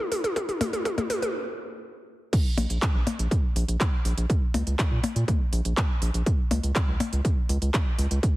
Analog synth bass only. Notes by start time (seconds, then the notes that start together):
2.58 A#1
2.70 A#1
2.95 A#1
3.19 A#1
3.56 A#1
3.68 A#1
4.05 A#1
4.18 A#1
4.54 C#2
4.67 C#2
4.91 A#2
5.16 A#2
5.53 A#1
5.65 A#1
6.02 A#1
6.14 A#1
6.51 C#2
6.63 C#2
6.88 C#2
7.13 C#2
7.49 C#2
7.62 C#2
7.99 C#2
8.11 C#2